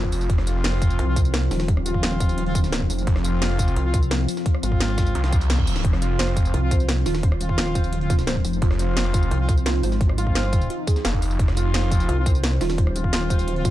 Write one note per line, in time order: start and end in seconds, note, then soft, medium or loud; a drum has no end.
0.00 0.28 F1 loud
0.00 13.71 F3 medium
0.00 13.71 C4 medium
0.00 0.29 F4 medium
0.00 kick medium
0.12 closed hi-hat medium
0.12 open hi-hat medium
0.12 tambourine medium
0.21 tambourine soft
0.30 0.63 F1 loud
0.30 3.06 C5 medium
0.30 kick loud
0.30 closed hi-hat medium
0.38 cross-stick medium
0.38 snare medium
0.47 1.06 F3 medium
0.47 1.06 C4 medium
0.47 1.06 F4 loud
0.47 closed hi-hat medium
0.47 tambourine medium
0.64 0.98 F1 loud
0.64 snare loud
0.64 closed hi-hat medium
0.64 open hi-hat medium
0.73 cross-stick soft
0.82 kick loud
0.82 closed hi-hat medium
0.82 tambourine medium
0.90 tambourine soft
0.99 1.50 C2 medium
0.99 closed hi-hat medium
1.08 1.20 F3 medium
1.08 1.20 C4 medium
1.08 1.20 F4 medium
1.16 kick loud
1.16 closed hi-hat medium
1.16 tambourine medium
1.25 tambourine soft
1.34 snare loud
1.34 closed hi-hat medium
1.42 closed hi-hat soft
1.51 2.48 D#1 loud
1.51 snare loud
1.51 open hi-hat medium
1.51 tambourine medium
1.60 snare loud
1.60 open hi-hat medium
1.60 tambourine soft
1.68 kick loud
1.68 closed hi-hat medium
1.77 cross-stick medium
1.86 2.44 F3 medium
1.86 2.44 C4 medium
1.86 2.44 F4 medium
1.86 closed hi-hat medium
1.86 tambourine medium
1.94 kick medium
2.03 snare loud
2.03 closed hi-hat medium
2.03 closed hi-hat loud
2.12 cross-stick soft
2.20 kick loud
2.20 closed hi-hat medium
2.20 tambourine medium
2.29 closed hi-hat soft
2.29 tambourine soft
2.38 closed hi-hat medium
2.46 2.75 D1 loud
2.46 2.59 F3 medium
2.46 2.59 C4 medium
2.46 2.59 F4 loud
2.46 closed hi-hat soft
2.55 kick loud
2.55 closed hi-hat medium
2.55 tambourine medium
2.64 snare medium
2.64 tambourine soft
2.72 2.88 C#1 loud
2.72 snare loud
2.72 closed hi-hat medium
2.72 closed hi-hat loud
2.81 kick medium
2.90 3.06 F1 loud
2.90 closed hi-hat medium
2.90 open hi-hat medium
2.90 tambourine medium
2.98 tambourine soft
3.07 3.40 F1 loud
3.07 5.84 F5 medium
3.07 kick loud
3.07 closed hi-hat medium
3.16 cross-stick medium
3.16 snare medium
3.24 3.83 F3 medium
3.24 3.83 C4 medium
3.24 3.83 F4 medium
3.24 closed hi-hat loud
3.24 closed hi-hat medium
3.24 tambourine medium
3.42 3.75 F1 loud
3.42 snare loud
3.42 closed hi-hat medium
3.42 open hi-hat medium
3.50 cross-stick soft
3.59 kick loud
3.59 closed hi-hat medium
3.59 tambourine medium
3.68 tambourine soft
3.76 4.27 C2 medium
3.76 closed hi-hat medium
3.85 3.98 F3 medium
3.85 3.98 C4 medium
3.85 3.98 F4 medium
3.94 kick loud
3.94 closed hi-hat medium
3.94 closed hi-hat loud
3.94 tambourine medium
4.02 tambourine soft
4.11 snare loud
4.11 closed hi-hat medium
4.20 closed hi-hat soft
4.28 closed hi-hat medium
4.28 open hi-hat medium
4.28 tambourine medium
4.37 snare medium
4.37 tambourine soft
4.46 kick loud
4.46 closed hi-hat medium
4.54 cross-stick medium
4.63 5.14 G#1 medium
4.63 5.22 F3 medium
4.63 5.22 C4 medium
4.63 5.22 F4 medium
4.63 closed hi-hat medium
4.63 tambourine medium
4.72 kick medium
4.80 snare loud
4.80 closed hi-hat medium
4.89 cross-stick soft
4.98 kick loud
4.98 snare loud
4.98 closed hi-hat medium
4.98 tambourine medium
5.06 tambourine soft
5.15 5.83 C2 loud
5.15 closed hi-hat medium
5.15 reverse cymbal medium
5.24 5.36 F3 medium
5.24 5.36 C4 medium
5.24 5.36 F4 loud
5.24 snare loud
5.24 closed hi-hat medium
5.32 kick loud
5.32 closed hi-hat medium
5.32 tambourine medium
5.41 closed hi-hat medium
5.41 tambourine soft
5.50 snare loud
5.50 closed hi-hat medium
5.59 kick medium
5.67 closed hi-hat medium
5.67 open hi-hat medium
5.67 tambourine medium
5.76 snare medium
5.76 open hi-hat medium
5.76 tambourine soft
5.80 snare medium
5.80 open hi-hat medium
5.85 6.18 F1 loud
5.85 8.61 C5 medium
5.85 kick loud
5.85 closed hi-hat medium
5.93 cross-stick medium
5.93 snare medium
6.02 6.60 F3 medium
6.02 6.61 C4 medium
6.02 6.18 F4 loud
6.02 6.61 F4 medium
6.02 closed hi-hat medium
6.02 tambourine medium
6.19 6.53 F1 loud
6.19 6.36 C5 medium
6.19 snare loud
6.19 closed hi-hat medium
6.19 open hi-hat medium
6.28 cross-stick soft
6.37 kick loud
6.37 closed hi-hat medium
6.37 tambourine medium
6.45 tambourine soft
6.54 7.05 C2 medium
6.54 6.70 F4 loud
6.54 closed hi-hat medium
6.54 closed hi-hat loud
6.63 6.75 F3 medium
6.63 6.75 C4 medium
6.63 6.75 F4 loud
6.71 6.88 C5 medium
6.71 kick loud
6.71 closed hi-hat medium
6.71 closed hi-hat loud
6.71 tambourine medium
6.80 tambourine soft
6.89 snare loud
6.89 closed hi-hat medium
6.97 closed hi-hat soft
7.06 8.05 D#1 loud
7.06 7.22 F4 loud
7.06 snare loud
7.06 open hi-hat medium
7.06 tambourine medium
7.15 snare loud
7.15 open hi-hat medium
7.15 tambourine soft
7.23 7.40 C5 medium
7.23 kick loud
7.23 closed hi-hat medium
7.32 cross-stick medium
7.41 7.99 F3 medium
7.41 7.99 C4 medium
7.41 7.99 F4 loud
7.41 closed hi-hat medium
7.41 tambourine medium
7.49 kick medium
7.58 7.74 F4 loud
7.58 snare loud
7.58 closed hi-hat medium
7.58 closed hi-hat loud
7.67 cross-stick soft
7.75 7.92 C5 medium
7.75 kick loud
7.75 closed hi-hat medium
7.75 tambourine medium
7.84 closed hi-hat soft
7.84 tambourine soft
7.93 closed hi-hat medium
8.01 8.27 C#1 loud
8.01 8.14 F3 medium
8.01 8.14 C4 medium
8.01 8.14 F4 medium
8.01 closed hi-hat soft
8.10 8.26 F4 loud
8.10 kick loud
8.10 closed hi-hat medium
8.10 closed hi-hat loud
8.10 tambourine medium
8.19 snare medium
8.19 tambourine soft
8.27 8.43 B0 loud
8.27 8.44 C5 medium
8.27 snare loud
8.27 closed hi-hat medium
8.36 kick medium
8.45 8.61 F1 medium
8.45 closed hi-hat medium
8.45 open hi-hat medium
8.45 tambourine medium
8.53 tambourine soft
8.62 8.95 F1 loud
8.62 11.38 D#4 medium
8.62 8.78 F4 loud
8.62 kick loud
8.62 closed hi-hat medium
8.71 cross-stick medium
8.71 snare medium
8.79 9.38 F3 medium
8.79 9.38 C4 medium
8.79 9.38 F4 medium
8.79 8.96 C5 medium
8.79 closed hi-hat medium
8.79 tambourine medium
8.97 9.30 F1 loud
8.97 snare loud
8.97 closed hi-hat medium
8.97 open hi-hat medium
9.05 cross-stick soft
9.14 9.30 F4 loud
9.14 kick loud
9.14 closed hi-hat medium
9.14 tambourine medium
9.23 tambourine soft
9.31 9.82 C2 loud
9.31 9.48 C5 medium
9.31 closed hi-hat loud
9.31 closed hi-hat medium
9.40 9.53 F3 medium
9.40 9.53 C4 medium
9.40 9.53 F4 medium
9.49 kick loud
9.49 closed hi-hat medium
9.49 tambourine medium
9.57 tambourine soft
9.66 9.82 F4 loud
9.66 snare loud
9.66 closed hi-hat medium
9.75 closed hi-hat soft
9.83 10.34 G#1 medium
9.83 10.00 C5 medium
9.83 closed hi-hat medium
9.83 open hi-hat medium
9.83 tambourine medium
9.92 snare soft
9.92 tambourine soft
10.01 kick loud
10.01 closed hi-hat medium
10.09 cross-stick medium
10.18 10.77 F3 medium
10.18 10.77 C4 medium
10.18 10.77 F4 medium
10.18 10.34 F4 loud
10.18 closed hi-hat medium
10.18 tambourine medium
10.27 kick medium
10.35 10.69 G1 loud
10.35 10.52 C5 medium
10.35 snare loud
10.35 closed hi-hat medium
10.44 cross-stick soft
10.53 kick loud
10.53 closed hi-hat medium
10.53 tambourine medium
10.61 tambourine soft
10.70 10.87 F4 loud
10.70 closed hi-hat medium
10.87 10.98 G#4 medium
10.87 kick loud
10.87 closed hi-hat medium
10.87 tambourine medium
10.96 snare medium
10.96 tambourine soft
11.05 11.38 F1 loud
11.05 11.16 F5 medium
11.05 snare loud
11.05 closed hi-hat medium
11.13 kick medium
11.22 11.33 F5 medium
11.22 closed hi-hat medium
11.22 open hi-hat medium
11.22 tambourine medium
11.31 tambourine soft
11.39 11.73 F1 loud
11.39 13.71 C5 medium
11.39 kick loud
11.39 closed hi-hat medium
11.48 cross-stick medium
11.48 snare medium
11.57 12.15 F3 medium
11.57 12.15 C4 medium
11.57 11.73 F4 loud
11.57 12.15 F4 loud
11.57 closed hi-hat medium
11.57 tambourine medium
11.74 12.07 F1 loud
11.74 11.91 C5 medium
11.74 snare loud
11.74 closed hi-hat medium
11.74 open hi-hat medium
11.83 cross-stick soft
11.91 kick loud
11.91 closed hi-hat medium
11.91 tambourine medium
12.00 tambourine soft
12.09 12.59 C2 medium
12.09 12.25 F4 loud
12.09 closed hi-hat medium
12.17 12.30 F3 medium
12.17 12.30 C4 medium
12.17 12.30 F4 medium
12.26 12.43 C5 medium
12.26 kick loud
12.26 closed hi-hat medium
12.26 tambourine medium
12.35 tambourine soft
12.43 snare loud
12.43 closed hi-hat medium
12.52 closed hi-hat soft
12.61 13.60 D#1 loud
12.61 12.77 F4 loud
12.61 snare loud
12.61 open hi-hat medium
12.61 tambourine medium
12.70 snare loud
12.70 open hi-hat medium
12.70 tambourine soft
12.78 12.95 C5 medium
12.78 kick loud
12.78 closed hi-hat medium
12.87 cross-stick medium
12.96 13.54 F3 medium
12.96 13.54 C4 medium
12.96 13.54 F4 medium
12.96 closed hi-hat medium
12.96 tambourine medium
13.04 kick medium
13.13 13.29 F4 loud
13.13 snare loud
13.13 closed hi-hat medium
13.22 cross-stick soft
13.30 13.47 C5 medium
13.30 kick loud
13.30 closed hi-hat medium
13.30 tambourine medium
13.39 closed hi-hat soft
13.39 tambourine soft
13.48 closed hi-hat medium
13.56 13.71 C#1 loud
13.56 13.69 F3 medium
13.56 13.69 C4 medium
13.56 13.69 F4 medium
13.56 closed hi-hat soft
13.65 13.71 F4 loud
13.65 kick loud
13.65 closed hi-hat medium
13.65 tambourine medium